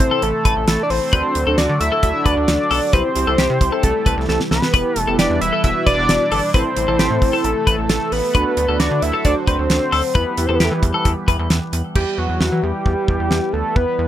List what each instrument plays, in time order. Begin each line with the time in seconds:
Already playing: analog synth pad C3 E3 A3 E4 A4, analog polysynth C4 E4 A4, analog synth lead C5
0.00 kick, closed hi-hat
0.11 clean electric guitar A4
0.22 analog synth bass A1, analog synth lead A4, closed hi-hat
0.45 analog synth bass A1, clean electric guitar B4, kick, closed hi-hat
0.56 analog synth bass A1
0.68 analog synth bass A1, analog synth lead A4, snare, closed hi-hat
0.83 analog synth lead D5
0.90 analog synth bass A1, analog synth lead C5, open hi-hat
1.13 analog synth bass D2, analog synth pad D3 F#3 F#4, analog polysynth D4 F#4 A4, clean electric guitar B4, kick, closed hi-hat
1.35 analog synth bass D2, closed hi-hat
1.47 analog synth bass D2, analog polysynth D4 F#4 A4, clean electric guitar A4
1.58 analog synth bass D2, clean electric guitar F#4, analog synth lead D5, snare, closed hi-hat
1.69 analog synth bass D3
1.81 analog synth bass D2, analog synth lead E5, closed hi-hat
1.92 clean electric guitar A4
2.03 analog synth bass D2, analog polysynth D4 F#4 A4, analog synth lead E5, kick, closed hi-hat
2.26 analog synth bass D2, clean electric guitar B4, analog synth lead D5, kick, closed hi-hat
2.37 analog synth bass D2
2.48 analog synth bass D2, snare, closed hi-hat
2.71 analog synth bass B1, clean electric guitar A4, open hi-hat
2.93 analog synth bass C2, analog synth pad C3 E3 G3 E4 G4, analog polysynth C4 E4 G4, clean electric guitar B4, analog synth lead C5, kick, closed hi-hat
3.16 analog synth bass C2, analog polysynth C4 E4 G4, closed hi-hat
3.27 analog synth bass C2, analog polysynth C4 E4 G4, clean electric guitar A4
3.38 analog synth bass C2, clean electric guitar G4, snare, closed hi-hat
3.50 analog synth bass C3
3.61 analog synth bass C2, kick, closed hi-hat
3.72 clean electric guitar A4
3.83 analog synth bass C2, analog synth lead A4, kick, closed hi-hat
4.06 analog synth bass C2, clean electric guitar B4, kick, closed hi-hat
4.17 analog synth bass C2
4.29 analog synth bass C2, analog synth lead A4, snare
4.40 snare
4.51 analog synth bass C2, analog synth lead B4, snare
4.62 snare
4.74 analog synth bass E1, analog synth pad B2 G3 E4 B4, analog polysynth B3 E4 G4, clean electric guitar B4, kick, closed hi-hat
4.96 analog synth bass E1, analog synth lead A4, closed hi-hat
5.08 analog synth bass E1, analog polysynth B3 E4 G4, clean electric guitar A4
5.19 analog synth bass E1, clean electric guitar G4, analog synth lead D5, snare, closed hi-hat
5.30 analog synth bass E2
5.41 analog synth bass E1, analog synth lead E5, closed hi-hat
5.53 clean electric guitar A4
5.64 analog synth bass E1, analog polysynth B3 E4 F#4, analog synth lead E5, kick, closed hi-hat
5.86 analog synth bass E1, clean electric guitar B4, analog synth lead D5, kick, closed hi-hat
5.98 analog synth bass E1
6.09 analog synth bass E1, snare, closed hi-hat
6.32 analog synth bass G1, clean electric guitar A4, open hi-hat
6.54 analog synth bass A1, analog synth pad C3 E3 A3 A4, analog polysynth C4 E4 A4, clean electric guitar B4, analog synth lead C5, kick, closed hi-hat
6.77 analog synth bass A1, analog polysynth C4 E4 A4, closed hi-hat
6.88 analog synth bass A1, analog polysynth C4 E4 A4, clean electric guitar A4
6.99 analog synth bass A1, clean electric guitar G4, snare, closed hi-hat
7.11 analog synth bass A2
7.22 analog synth bass A1, kick, open hi-hat
7.33 clean electric guitar A4
7.44 analog synth bass A1, analog synth lead A4, closed hi-hat
7.67 analog synth bass A1, clean electric guitar B4, kick, closed hi-hat
7.78 analog synth bass A1
7.89 analog synth bass A1, analog synth lead A4, snare, closed hi-hat
8.12 analog synth bass A1, analog synth lead B4, open hi-hat
8.35 analog synth bass D2, analog synth pad D3 F#3 F#4, analog polysynth D4 F#4 A4, clean electric guitar B4, kick, closed hi-hat
8.57 analog synth bass D2, closed hi-hat
8.68 analog synth bass D2, analog polysynth D4 F#4 B4, clean electric guitar A4
8.80 analog synth bass D2, clean electric guitar F#4, analog synth lead D5, snare, closed hi-hat
8.91 analog synth bass D3
9.02 analog synth bass D2, analog synth lead E5, closed hi-hat
9.14 clean electric guitar A4
9.25 analog synth bass D2, analog polysynth D4 F#4 C5, analog synth lead D5, kick, closed hi-hat
9.47 analog synth bass D2, clean electric guitar B4, analog synth lead C5, kick, closed hi-hat
9.59 analog synth bass D2
9.70 analog synth bass D2, snare, closed hi-hat
9.92 analog synth bass D2, clean electric guitar A4, open hi-hat
10.15 analog synth bass E2, analog synth pad E3 G3 B3 G4 B4, analog polysynth E4 G4 B4, clean electric guitar B4, analog synth lead B4, kick, closed hi-hat
10.37 analog synth bass E2, analog polysynth E4 G4 B4, closed hi-hat
10.46 analog synth bass E2, analog polysynth E4 G4 B4, clean electric guitar A4, analog synth lead C5
10.55 analog synth lead B4
10.60 analog synth bass E2, clean electric guitar G4, snare, closed hi-hat
10.65 analog synth lead A4
10.71 analog synth bass E3, analog synth lead B4
10.83 analog synth bass E2, kick, closed hi-hat
10.94 clean electric guitar A4
11.05 analog synth bass E2, kick, closed hi-hat
11.28 analog synth bass E2, clean electric guitar B4, kick, closed hi-hat
11.39 analog synth bass E2
11.50 analog synth bass E2, snare, closed hi-hat
11.73 analog synth bass E2, closed hi-hat
11.95 analog synth bass E2, analog synth pad E3 G3 B3 E4 B4, analog synth lead G4, kick, crash
12.18 analog synth bass E2, analog synth lead F#4
12.29 analog synth bass E2
12.41 analog synth bass E2, snare
12.52 analog synth bass E3
12.63 analog synth bass E2, analog synth lead G4
12.86 analog synth bass E2, kick
13.08 analog synth bass E2, kick
13.20 analog synth bass E2
13.31 analog synth bass E2, snare
13.53 analog synth bass D2, analog synth lead A4
13.76 analog synth bass E2, analog synth lead B4, kick
13.99 analog synth bass E2